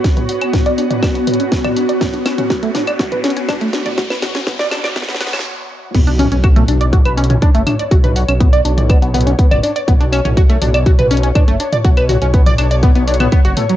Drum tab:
CC |--------------------------------|--------------------------------|--------------------------------|x-------------------------------|
HH |x-x-o-x-x-x-o-x-x-x-oxx-x-x-o-x-|x-x-o-x-x-x-o-x-x-x-oxx-x-x-o-x-|x-x-o-x-x-x-o-x-x-x-oxx---------|x-x-o-x-x-x-o-x-x-x-oxx-x-x-o-x-|
CL |------x---------x---------x-----|----x---------x---------x-------|--x---------x---------x---------|--------x---------x---------x---|
SD |o-------o-------o-------o-------|o---o---o---o---o---o---o---o---|o-o-o-o-o-o-o-o-oooooooo--------|--------------------------------|
T2 |--o-----o-----o-----o-----o-----|o-----o-----o-----o-----o-----o-|----o-----o-----o-----o---------|----o-----o-----o-----o-----o---|
BD |o-------o-------o-------o-------|o-------o-------o-------o-------|o-------o-------o---------------|o-------o-------o-------o-------|

CC |--------------------------------|--------------------------------|--------------------------------|
HH |x-x-o-x-x-x-o-x-x-x-oxx-x-x-o-x-|x-x-o-x-x-x-o-x-x-x-oxx-x-x-o-x-|x-x-o-x-x-x-o-x-x-x-oxx-x-x-o-x-|
CL |------x---------x---------x-----|----x---------x---------x-------|--x---------x---------x---------|
SD |--------------------------------|--------------------------------|--------------------------------|
T2 |--o-----o-----o-----o-----o-----|o-----o-----o-----o-----o-----o-|----o-----o-----o-----o-----o---|
BD |o-------o-------o-------o-------|o-------o-------o-------o-------|o-------o-------o-------o-------|